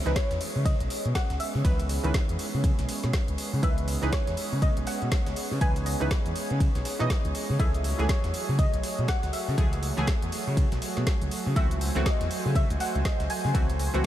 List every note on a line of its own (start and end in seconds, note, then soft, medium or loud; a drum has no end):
0.00 7.56 G#3 medium
0.00 7.56 B3 medium
0.00 7.56 C#4 medium
0.00 11.52 G#4 medium
0.00 11.52 C#5 medium
0.00 0.12 E5 loud
0.05 0.13 C#2 loud
0.05 1.62 E3 medium
0.05 1.62 D#4 medium
0.05 1.63 B4 loud
0.05 snare medium
0.05 closed hi-hat soft
0.16 0.67 C#5 medium
0.16 kick loud
0.16 snare loud
0.16 closed hi-hat medium
0.16 ride medium
0.31 0.38 E2 medium
0.31 snare medium
0.31 closed hi-hat medium
0.41 open hi-hat loud
0.41 ride medium
0.55 0.73 C#3 loud
0.65 1.16 D#5 loud
0.65 kick loud
0.65 closed hi-hat medium
0.65 ride medium
0.80 0.88 B1 loud
0.80 closed hi-hat medium
0.90 snare medium
0.90 open hi-hat loud
0.90 ride medium
1.05 1.13 B2 medium
1.05 closed hi-hat soft
1.15 1.38 F#5 loud
1.15 kick loud
1.15 snare loud
1.15 closed hi-hat medium
1.15 ride medium
1.30 1.37 C#2 medium
1.30 snare medium
1.30 closed hi-hat medium
1.40 3.34 E5 loud
1.40 open hi-hat loud
1.40 ride medium
1.55 1.62 C#3 loud
1.55 snare soft
1.64 1.98 C#2 loud
1.64 2.01 D#3 medium
1.64 2.01 E3 medium
1.64 2.01 B4 loud
1.64 kick loud
1.64 closed hi-hat medium
1.64 ride medium
1.79 closed hi-hat medium
1.79 ride soft
1.89 open hi-hat loud
1.89 ride medium
2.04 2.12 C#2 loud
2.04 3.61 D#3 medium
2.04 3.60 E3 medium
2.04 3.61 B4 loud
2.04 closed hi-hat soft
2.04 ride soft
2.14 kick loud
2.14 snare loud
2.14 closed hi-hat medium
2.14 ride medium
2.29 2.36 E2 medium
2.29 closed hi-hat medium
2.39 open hi-hat loud
2.39 ride medium
2.54 2.71 C#3 loud
2.64 kick loud
2.64 closed hi-hat medium
2.64 ride medium
2.79 2.86 B1 medium
2.79 snare soft
2.79 closed hi-hat medium
2.89 snare medium
2.89 open hi-hat loud
2.89 ride medium
3.03 3.11 B2 medium
3.03 snare soft
3.03 closed hi-hat soft
3.13 kick loud
3.13 snare loud
3.13 closed hi-hat medium
3.13 ride medium
3.28 3.36 C#2 medium
3.28 closed hi-hat medium
3.38 open hi-hat loud
3.38 ride medium
3.53 3.60 C#3 loud
3.63 3.97 C#2 loud
3.63 3.99 D#3 medium
3.63 3.99 E3 medium
3.63 3.99 B4 loud
3.63 4.14 E5 medium
3.63 kick loud
3.63 closed hi-hat medium
3.63 ride medium
3.78 closed hi-hat medium
3.88 open hi-hat loud
3.88 ride medium
4.02 4.10 C#2 loud
4.02 5.59 E3 medium
4.02 5.59 D#4 medium
4.02 5.59 B4 loud
4.02 snare medium
4.02 closed hi-hat soft
4.12 4.64 C#5 medium
4.12 kick loud
4.12 snare loud
4.12 closed hi-hat medium
4.12 ride medium
4.27 4.35 E2 medium
4.27 snare medium
4.27 closed hi-hat medium
4.37 open hi-hat loud
4.37 ride medium
4.52 4.70 C#3 loud
4.62 4.73 D#5 loud
4.62 kick loud
4.62 closed hi-hat medium
4.62 ride medium
4.77 4.84 B1 medium
4.77 closed hi-hat medium
4.87 5.64 F#5 loud
4.87 snare medium
4.87 open hi-hat loud
4.87 ride medium
5.02 5.09 B2 medium
5.02 closed hi-hat soft
5.12 kick loud
5.12 snare loud
5.12 closed hi-hat medium
5.12 ride medium
5.26 5.34 C#2 medium
5.26 snare medium
5.26 closed hi-hat soft
5.36 open hi-hat loud
5.36 ride medium
5.51 5.59 C#3 loud
5.51 snare soft
5.61 5.95 C#2 loud
5.61 5.97 E3 medium
5.61 5.97 D#4 medium
5.61 5.98 B4 loud
5.61 5.72 G#5 loud
5.61 kick loud
5.61 closed hi-hat medium
5.61 ride medium
5.76 closed hi-hat medium
5.76 ride soft
5.86 6.56 D#5 medium
5.86 open hi-hat loud
5.86 ride medium
6.00 6.08 C#2 loud
6.00 6.97 E3 medium
6.00 6.97 D#4 medium
6.00 6.97 B4 loud
6.00 closed hi-hat soft
6.00 ride soft
6.11 kick loud
6.11 snare loud
6.11 closed hi-hat medium
6.11 ride medium
6.26 6.33 E2 medium
6.26 closed hi-hat soft
6.36 open hi-hat loud
6.36 ride medium
6.50 6.68 C#3 loud
6.50 closed hi-hat soft
6.60 kick loud
6.60 closed hi-hat medium
6.60 ride medium
6.75 6.83 B1 medium
6.75 snare medium
6.75 closed hi-hat medium
6.85 snare medium
6.85 open hi-hat loud
6.85 ride medium
6.99 7.08 B2 medium
6.99 7.57 E3 loud
6.99 7.57 D#4 medium
6.99 7.58 D#5 loud
6.99 snare soft
6.99 closed hi-hat soft
7.10 kick loud
7.10 snare loud
7.10 closed hi-hat medium
7.10 ride medium
7.25 7.32 C#2 medium
7.25 closed hi-hat soft
7.35 open hi-hat loud
7.35 ride medium
7.50 7.57 C#3 loud
7.59 7.93 C#2 loud
7.59 7.95 E3 medium
7.59 14.06 F#3 medium
7.59 7.96 A3 medium
7.59 14.06 A3 medium
7.59 14.06 F#4 medium
7.59 7.96 G#4 loud
7.59 8.11 E5 loud
7.59 kick loud
7.59 closed hi-hat medium
7.59 ride medium
7.74 closed hi-hat soft
7.84 open hi-hat loud
7.84 ride medium
7.98 8.07 C#2 loud
7.98 9.55 E3 medium
7.98 9.56 A3 medium
7.98 9.56 G#4 loud
7.98 snare medium
7.98 closed hi-hat soft
8.09 8.55 C#5 medium
8.09 kick loud
8.09 snare loud
8.09 closed hi-hat medium
8.09 ride medium
8.24 8.31 E2 medium
8.24 snare medium
8.24 closed hi-hat medium
8.34 open hi-hat loud
8.34 ride medium
8.49 8.66 C#3 loud
8.59 9.10 D#5 loud
8.59 kick loud
8.59 closed hi-hat medium
8.59 ride medium
8.73 8.81 B1 medium
8.73 closed hi-hat medium
8.83 snare medium
8.83 open hi-hat loud
8.83 ride medium
8.98 9.06 B2 medium
8.98 closed hi-hat soft
9.08 9.34 F#5 loud
9.08 kick loud
9.08 snare loud
9.08 closed hi-hat medium
9.08 ride medium
9.23 9.31 C#2 medium
9.23 snare medium
9.23 closed hi-hat medium
9.33 11.28 E5 loud
9.33 open hi-hat loud
9.33 ride medium
9.48 9.55 C#3 loud
9.48 snare soft
9.57 9.92 C#2 loud
9.57 9.94 E3 medium
9.57 9.94 A3 medium
9.57 9.94 G#4 loud
9.57 kick loud
9.57 closed hi-hat medium
9.57 ride medium
9.73 closed hi-hat medium
9.73 ride soft
9.83 open hi-hat loud
9.83 ride medium
9.97 10.05 C#2 medium
9.97 11.54 E3 medium
9.97 11.54 A3 medium
9.97 11.54 G#4 loud
9.97 closed hi-hat soft
9.97 ride soft
10.07 kick loud
10.07 snare loud
10.07 closed hi-hat medium
10.07 ride medium
10.22 10.30 E2 medium
10.22 closed hi-hat medium
10.32 open hi-hat loud
10.32 ride medium
10.47 10.64 C#3 loud
10.57 kick loud
10.57 closed hi-hat medium
10.57 ride medium
10.72 10.79 B1 loud
10.72 snare medium
10.72 closed hi-hat medium
10.82 snare medium
10.82 open hi-hat loud
10.82 ride medium
10.97 11.04 B2 medium
10.97 snare soft
10.97 closed hi-hat soft
11.07 kick loud
11.07 snare loud
11.07 closed hi-hat medium
11.07 ride medium
11.21 11.29 C#2 medium
11.21 closed hi-hat medium
11.31 open hi-hat loud
11.31 ride medium
11.46 11.54 C#3 loud
11.56 11.90 C#2 loud
11.56 11.92 E3 medium
11.56 11.92 A3 medium
11.56 11.92 C4 medium
11.56 11.93 F#4 loud
11.56 14.06 C5 medium
11.56 12.07 E5 medium
11.56 14.06 G#5 medium
11.56 kick loud
11.56 closed hi-hat medium
11.56 ride medium
11.71 closed hi-hat medium
11.81 open hi-hat loud
11.81 ride medium
11.95 12.03 C#2 loud
11.95 13.52 E3 medium
11.95 13.52 A3 medium
11.95 13.52 C4 medium
11.95 13.53 F#4 loud
11.95 snare medium
11.95 closed hi-hat soft
12.06 12.57 D#5 medium
12.06 kick loud
12.06 snare loud
12.06 closed hi-hat medium
12.06 ride medium
12.21 12.28 E2 medium
12.21 snare medium
12.21 closed hi-hat medium
12.31 open hi-hat loud
12.31 ride medium
12.45 12.63 C#3 loud
12.55 12.81 E5 loud
12.55 kick loud
12.55 closed hi-hat medium
12.55 ride medium
12.70 12.78 C#2 loud
12.70 closed hi-hat medium
12.80 13.06 F#5 loud
12.80 snare medium
12.80 open hi-hat loud
12.80 ride medium
12.95 13.03 C#2 medium
12.95 closed hi-hat soft
13.05 13.31 D#5 medium
13.05 kick loud
13.05 snare loud
13.05 closed hi-hat medium
13.05 ride medium
13.20 13.27 C#2 medium
13.20 snare medium
13.20 closed hi-hat medium
13.30 14.06 G#5 loud
13.30 open hi-hat loud
13.30 ride medium
13.45 13.52 C#3 loud
13.45 snare soft
13.54 13.88 C#2 loud
13.54 13.91 E3 medium
13.54 13.91 A3 medium
13.54 13.91 C4 medium
13.54 13.91 F#4 loud
13.54 kick loud
13.54 closed hi-hat medium
13.54 ride medium
13.70 closed hi-hat medium
13.70 ride soft
13.79 open hi-hat loud
13.79 ride medium
13.94 14.02 C#2 loud
13.94 14.06 E3 medium
13.94 14.06 A3 medium
13.94 14.06 C4 medium
13.94 14.06 F#4 loud
13.94 closed hi-hat soft
13.94 ride soft